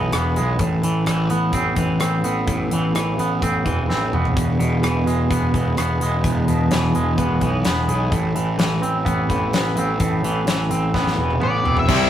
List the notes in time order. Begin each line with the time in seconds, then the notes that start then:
Already playing: B1 B2 E3 G#3 B3
0.12 E1 B3, cross-stick, closed hi-hat
0.36 B1 G#3, closed hi-hat
0.59 A1 A2, kick, closed hi-hat
0.83 A1 E3, closed hi-hat
1.06 A1 E3, cross-stick, closed hi-hat
1.30 A1 B3, closed hi-hat
1.53 A1 C4, kick, closed hi-hat
1.76 A1 E3, kick, closed hi-hat
2.00 A1 C4, cross-stick, closed hi-hat
2.24 A1 B3, closed hi-hat
2.47 A1 A2, kick, closed hi-hat
2.71 A1 E3, closed hi-hat
2.94 A1 E3, cross-stick, closed hi-hat
3.17 A1 B3, closed hi-hat
3.42 A1 C4, kick, closed hi-hat
3.65 E1 E3, kick, closed hi-hat
3.89 A1 C4, snare
4.13 E1 B3, mid tom
4.25 floor tom
4.36 E1 E2, kick, closed hi-hat
4.59 E1 B2, closed hi-hat
4.83 E1 E3, cross-stick, closed hi-hat
5.06 E1 G#3, closed hi-hat
5.30 E1 B3, kick, closed hi-hat
5.54 E1 E3, kick, closed hi-hat
5.77 E1 B3, cross-stick, closed hi-hat
6.00 E1 G#3, closed hi-hat
6.24 E1 E2, kick, closed hi-hat
6.47 E1 B2, closed hi-hat
6.71 E1 E3, snare, closed hi-hat
6.95 E1 G#3, closed hi-hat
7.17 E1 B3, kick, closed hi-hat
7.41 B1 E3, kick, closed hi-hat
7.64 E1 B3, snare, closed hi-hat
7.88 B1 G#3, closed hi-hat
8.12 A1 A2, kick, closed hi-hat
8.35 A1 E3, closed hi-hat
8.59 A1 E3, snare, closed hi-hat
8.82 A1 C4, closed hi-hat
9.05 A1 B3, kick, closed hi-hat
9.30 A1 E3, kick, closed hi-hat
9.53 A1 B3, snare, closed hi-hat
9.77 A1 C4, closed hi-hat
9.99 A1 A2, kick, closed hi-hat
10.23 A1 E3, closed hi-hat
10.47 A1 E3, snare, closed hi-hat
10.70 A1 C4, closed hi-hat
10.94 A1 B3, kick, snare
11.07 snare
11.17 E1 E3
11.30 high tom
11.41 A1 B3 D5, mid tom
11.64 E1 C4, floor tom
11.77 E5, floor tom
11.88 C2 C3 G3 C4 E4 G4 E5 C6, kick, crash